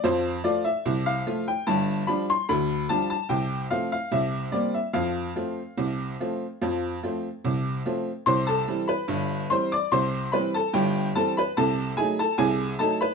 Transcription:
X:1
M:2/4
L:1/16
Q:1/4=73
K:F
V:1 name="Honky-tonk piano"
c2 d e2 f2 g | a2 =b c' b2 a a | g2 f f e2 d e | f8- |
f4 z4 | [K:C] [cc'] [Aa]2 [Bb]3 [cc'] [dd'] | [cc']2 [Bb] [Aa] [Gg]2 [Aa] [Bb] | [Aa]2 [_A_a] [=A=a] [_A_a]2 [=A=a] [Bb] |]
V:2 name="Honky-tonk piano" clef=bass
[F,,F,]2 [F,A,F]2 [C,,C,]2 [F,A,F]2 | [G,,,G,,]2 [F,G,D]2 [D,,D,]2 [F,G,D]2 | [C,,C,]2 [F,A,C]2 [C,,C,]2 [G,B,C]2 | [F,,F,]2 [F,A,C]2 [C,,C,]2 [F,A,C]2 |
[F,,F,]2 [F,A,C]2 [C,,C,]2 [F,A,C]2 | [K:C] [C,,C,]2 [E,G,C]2 [G,,,G,,]2 [E,G,C]2 | [C,,C,]2 [E,G,C]2 [G,,,G,,]2 [E,G,C]2 | [C,,C,]2 [_G,A,_E]2 [C,,C,]2 [G,A,E]2 |]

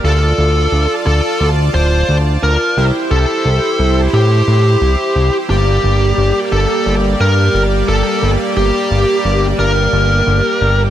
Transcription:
X:1
M:4/4
L:1/8
Q:1/4=88
K:Gdor
V:1 name="Lead electric guitar"
A3 A z c z B | z A3 G4 | G3 A z B z A | z G3 B4 |]
V:2 name="Supersaw synth"
[Fda]8 | [EGc]8 | [G,B,d]8- | [G,B,d]8 |]
V:3 name="Analog synth bass" clef=bass
D,, D,, D,, D,, D,, D,,, D,, D,, | C,, C,, C,, C,, A,, A,, C,, C,, | G,,, G,,, G,,, G,,, G,,, G,, G,,, G,,, | G,,, G,,, G,,, G,,, G,,, G,,, G,,, G,,, |]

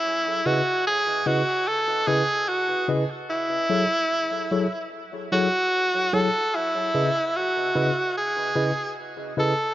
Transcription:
X:1
M:4/4
L:1/8
Q:"Swing 16ths" 1/4=74
K:C#m
V:1 name="Tine electric piano"
z [C,EGBd] z [C,EGBd] z [C,EGBd] z [C,EGBd] | z [F,EGAc] z [F,EGAc] z [F,EGAc] z [F,EGAc] | z [C,EGBd] z [C,EGBd] z [C,EGBd] z [C,EGBd] |]
V:2 name="Tenor saxophone"
E F G F A G F z | E4 z F2 A | E2 F2 G2 z A |]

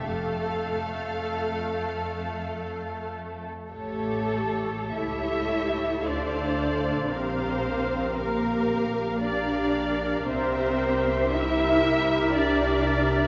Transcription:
X:1
M:3/4
L:1/8
Q:1/4=56
K:F
V:1 name="Violin section"
f4- f z | ^c2 c2 f2 | f2 f2 f2 | e2 e4 |]
V:2 name="Violin section"
[A,A]6 | A2 e2 d2 | c2 B2 d2 | c2 e2 d2 |]
V:3 name="Viola section"
A4- A z | [GA]2 [GA]2 [Ac]2 | [GB]2 [GB]2 [GB]2 | [GB]2 [GB]4 |]
V:4 name="Cello section"
F,,6 | A,2 E2 D2 | C2 B,2 D2 | C2 E2 D2 |]
V:5 name="Double bass section" clef=bass
F,,,2 z4 | A,,,2 ^C,,2 D,,2 | B,,,6 | C,,6 |]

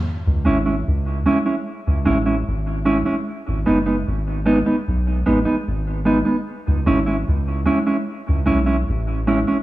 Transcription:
X:1
M:4/4
L:1/16
Q:1/4=75
K:C#m
V:1 name="Clean electric guitar"
z2 [G,CE] [G,CE] z2 [G,CE] [G,CE] z2 [G,CE] [G,CE] z2 [G,CE] [G,CE] | z2 [G,B,D] [G,B,D] z2 [G,B,D] [G,B,D] z2 [G,B,D] [G,B,D] z2 [G,B,D] [G,B,D] | z2 [G,CE] [G,CE] z2 [G,CE] [G,CE] z2 [G,CE] [G,CE] z2 [G,CE] [G,CE] |]
V:2 name="Sub bass" clef=bass
z C,, G,,,2 C,,2 z3 C,, A,,,2 G,,,3 z | z G,,, F,,,2 G,,,3 z B,,,2 A,,, z G,,,3 z | z C,, G,,,2 C,,2 z3 C,, B,,,2 A,,,3 z |]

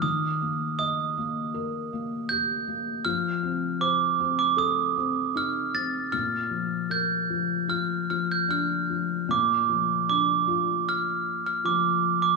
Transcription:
X:1
M:4/4
L:1/16
Q:1/4=78
K:Bb
V:1 name="Glockenspiel"
e'4 e'8 g'4 | f'4 d'3 d' e'4 f'2 a'2 | f'4 g'4 f'2 f' g' f'4 | d'4 d'4 f'3 f' d'3 d' |]
V:2 name="Felt piano"
E,2 B,2 e2 B,2 B2 B,2 G2 B,2 | F,2 C2 c2 C2 A2 C2 E2 C2 | B,,2 F,2 B2 F,2 F2 F,2 D2 F,2 | B,,2 F,2 D2 F6 F,4 |]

